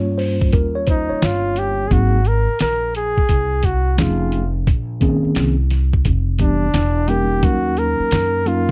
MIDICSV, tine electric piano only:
0, 0, Header, 1, 2, 480
1, 0, Start_track
1, 0, Tempo, 689655
1, 1331, Time_signature, 4, 2, 24, 8
1, 6065, End_track
2, 0, Start_track
2, 0, Title_t, "Tine electric piano"
2, 0, Program_c, 0, 4
2, 0, Note_on_c, 0, 55, 51
2, 0, Note_on_c, 0, 58, 45
2, 0, Note_on_c, 0, 61, 50
2, 0, Note_on_c, 0, 65, 61
2, 0, Note_on_c, 0, 73, 90
2, 124, Note_on_c, 0, 72, 84
2, 136, Note_off_c, 0, 73, 0
2, 351, Note_off_c, 0, 72, 0
2, 368, Note_on_c, 0, 70, 89
2, 524, Note_on_c, 0, 73, 95
2, 531, Note_off_c, 0, 70, 0
2, 606, Note_on_c, 0, 72, 80
2, 612, Note_off_c, 0, 73, 0
2, 762, Note_on_c, 0, 73, 89
2, 769, Note_off_c, 0, 72, 0
2, 1300, Note_off_c, 0, 73, 0
2, 1301, Note_off_c, 0, 55, 0
2, 1303, Note_off_c, 0, 58, 0
2, 1304, Note_off_c, 0, 61, 0
2, 1306, Note_off_c, 0, 65, 0
2, 1325, Note_on_c, 0, 54, 59
2, 1330, Note_on_c, 0, 58, 50
2, 1332, Note_on_c, 0, 60, 56
2, 1335, Note_on_c, 0, 63, 52
2, 1339, Note_on_c, 0, 68, 63
2, 1517, Note_off_c, 0, 54, 0
2, 1520, Note_off_c, 0, 58, 0
2, 1521, Note_off_c, 0, 60, 0
2, 1523, Note_off_c, 0, 63, 0
2, 1525, Note_off_c, 0, 68, 0
2, 2766, Note_on_c, 0, 53, 60
2, 2770, Note_on_c, 0, 57, 54
2, 2773, Note_on_c, 0, 61, 59
2, 2776, Note_on_c, 0, 63, 57
2, 2780, Note_on_c, 0, 68, 66
2, 3071, Note_off_c, 0, 53, 0
2, 3073, Note_off_c, 0, 57, 0
2, 3074, Note_off_c, 0, 61, 0
2, 3076, Note_off_c, 0, 63, 0
2, 3078, Note_off_c, 0, 68, 0
2, 3484, Note_on_c, 0, 51, 93
2, 3488, Note_on_c, 0, 58, 72
2, 3492, Note_on_c, 0, 60, 78
2, 3494, Note_on_c, 0, 61, 79
2, 3499, Note_on_c, 0, 68, 90
2, 3852, Note_off_c, 0, 51, 0
2, 3855, Note_off_c, 0, 58, 0
2, 3856, Note_off_c, 0, 60, 0
2, 3858, Note_off_c, 0, 61, 0
2, 3860, Note_off_c, 0, 68, 0
2, 4445, Note_on_c, 0, 52, 59
2, 4450, Note_on_c, 0, 55, 53
2, 4452, Note_on_c, 0, 59, 57
2, 4456, Note_on_c, 0, 62, 55
2, 4459, Note_on_c, 0, 67, 65
2, 4638, Note_off_c, 0, 52, 0
2, 4640, Note_off_c, 0, 55, 0
2, 4641, Note_off_c, 0, 59, 0
2, 4643, Note_off_c, 0, 62, 0
2, 4645, Note_off_c, 0, 67, 0
2, 4926, Note_on_c, 0, 55, 63
2, 4930, Note_on_c, 0, 58, 55
2, 4935, Note_on_c, 0, 61, 62
2, 4938, Note_on_c, 0, 63, 57
2, 4942, Note_on_c, 0, 70, 72
2, 5160, Note_off_c, 0, 58, 0
2, 5162, Note_off_c, 0, 61, 0
2, 5164, Note_on_c, 0, 54, 57
2, 5166, Note_off_c, 0, 63, 0
2, 5169, Note_on_c, 0, 58, 47
2, 5170, Note_off_c, 0, 70, 0
2, 5171, Note_on_c, 0, 61, 54
2, 5175, Note_on_c, 0, 63, 52
2, 5179, Note_on_c, 0, 70, 64
2, 5231, Note_off_c, 0, 55, 0
2, 5854, Note_off_c, 0, 54, 0
2, 5856, Note_off_c, 0, 58, 0
2, 5857, Note_off_c, 0, 61, 0
2, 5859, Note_off_c, 0, 63, 0
2, 5861, Note_off_c, 0, 70, 0
2, 5884, Note_on_c, 0, 54, 74
2, 5888, Note_on_c, 0, 58, 67
2, 5892, Note_on_c, 0, 61, 69
2, 5895, Note_on_c, 0, 63, 67
2, 5898, Note_on_c, 0, 70, 83
2, 6065, Note_off_c, 0, 54, 0
2, 6065, Note_off_c, 0, 58, 0
2, 6065, Note_off_c, 0, 61, 0
2, 6065, Note_off_c, 0, 63, 0
2, 6065, Note_off_c, 0, 70, 0
2, 6065, End_track
0, 0, End_of_file